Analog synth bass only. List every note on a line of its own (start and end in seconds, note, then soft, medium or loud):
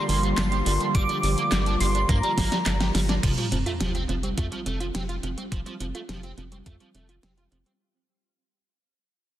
0.09 0.34 G1 medium
0.38 0.63 G1 medium
0.66 0.79 G1 loud
0.95 1.07 G1 loud
1.23 1.36 G1 medium
1.52 1.77 G1 medium
1.81 2.06 G1 medium
2.09 2.22 G2 medium
2.38 2.50 G1 medium
2.66 2.91 G1 medium
2.95 3.20 G1 loud
3.23 3.36 F1 loud
3.52 3.64 F1 medium
3.81 4.06 F1 medium
4.09 4.34 F1 medium
4.38 4.50 F2 medium
4.66 4.91 F1 medium
4.95 5.20 F1 medium
5.23 5.36 F1 medium
5.52 5.64 F1 medium
5.80 5.93 F1 medium
6.09 6.34 F1 medium
6.38 6.63 F1 medium
6.66 6.79 F2 medium
6.95 7.20 F1 medium
7.23 7.48 F1 medium
7.52 7.64 F1 medium